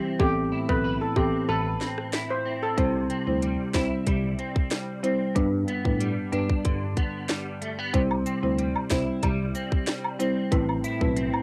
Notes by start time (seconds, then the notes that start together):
Already playing: C3 E3 G3 C4 E4 G4
0.19 A1 A2 E3 B3 C4 G4 A4, kick
0.52 E4
0.69 B1 E3 B3 C4 A4 B4, kick
0.84 B4
1.01 A4
1.16 A1 E3 B3 C4 G4 A4, kick
1.49 A1 A4 B4
1.81 C4, snare
1.98 cross-stick
2.13 E4, snare
2.30 C5
2.45 C4
2.63 A4
2.77 C2 C3 G3 C4 E4 C5, kick, closed hi-hat
3.10 C4, closed hi-hat
3.27 D2 G3 C4 E4 C5
3.42 G3, closed hi-hat
3.74 C2 G3 C4 E4 C5, kick, snare, closed hi-hat
4.07 C2 G3, kick, closed hi-hat
4.39 C4, closed hi-hat
4.56 kick
4.71 G3, snare, closed hi-hat
5.03 G3 C4 E4 C5, closed hi-hat
5.35 G2 G3 B3 D4 B4, kick, closed hi-hat
5.68 B3, closed hi-hat
5.85 A2 G3 B3 D4 B4, kick
6.00 G3, closed hi-hat
6.32 G2 G3 B3 D4 B4, closed hi-hat
6.49 kick
6.65 G2 D3, kick, closed hi-hat
6.97 B3, kick, closed hi-hat
7.29 G3, snare, closed hi-hat
7.62 A3, closed hi-hat
7.79 B3
7.93 C2 C3 G3 C4 E4 C5, kick, closed hi-hat
8.11 high woodblock
8.26 C4, closed hi-hat, cabasa
8.43 D2 G3 C4 E4 C5
8.58 G3, closed hi-hat
8.76 high woodblock
8.90 C2 G3 C4 E4 C5, kick, snare, closed hi-hat, cabasa
9.23 C2 G3, kick, closed hi-hat, high woodblock
9.55 C4, closed hi-hat, cabasa
9.72 kick
9.87 G3, snare, closed hi-hat
10.04 high woodblock
10.19 G3 C4 E4 C5, closed hi-hat, cabasa
10.52 A1 A2 A3 C4 E4 B4, kick, closed hi-hat
10.69 high woodblock
10.84 E4, closed hi-hat, cabasa
11.01 B1 A3 C4 E4 B4, kick
11.16 C4, closed hi-hat
11.34 high woodblock